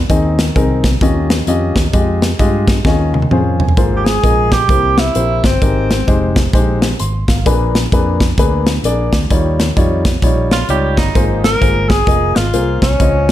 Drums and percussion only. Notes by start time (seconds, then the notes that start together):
0.10 kick, closed hi-hat
0.39 snare, closed hi-hat
0.56 kick, closed hi-hat
0.84 kick, snare, closed hi-hat
1.01 kick, closed hi-hat
1.30 snare, closed hi-hat
1.47 closed hi-hat
1.76 kick, snare, closed hi-hat
1.93 kick, closed hi-hat
2.22 snare, closed hi-hat
2.39 kick, closed hi-hat
2.68 kick, snare, closed hi-hat
2.85 kick, snare
3.14 high tom
3.22 high tom
3.31 mid tom
3.60 floor tom
3.69 floor tom
3.77 kick, closed hi-hat
4.06 snare, closed hi-hat
4.24 kick, closed hi-hat
4.52 kick, snare, closed hi-hat
4.69 kick, closed hi-hat
4.98 snare, closed hi-hat
5.15 closed hi-hat
5.44 kick, snare, closed hi-hat
5.62 kick, closed hi-hat
5.91 snare, closed hi-hat
6.08 kick, closed hi-hat
6.36 kick, snare, closed hi-hat
6.53 kick, closed hi-hat
6.82 snare, closed hi-hat
6.99 closed hi-hat
7.28 kick, snare, closed hi-hat
7.46 kick, closed hi-hat
7.75 snare, closed hi-hat
7.92 kick, closed hi-hat
8.20 kick, snare, closed hi-hat
8.38 kick, closed hi-hat
8.67 snare, closed hi-hat
8.84 closed hi-hat
9.13 kick, snare, closed hi-hat
9.30 kick, closed hi-hat
9.60 snare, closed hi-hat
9.77 kick, closed hi-hat
10.05 kick, snare, closed hi-hat
10.22 kick, closed hi-hat
10.51 snare, closed hi-hat
10.69 closed hi-hat
10.97 kick, snare, closed hi-hat
11.15 kick, closed hi-hat
11.44 snare, closed hi-hat
11.62 kick, closed hi-hat
11.90 kick, snare, closed hi-hat
12.07 kick, closed hi-hat
12.36 snare, closed hi-hat
12.54 closed hi-hat
12.82 kick, snare, closed hi-hat
13.00 kick, closed hi-hat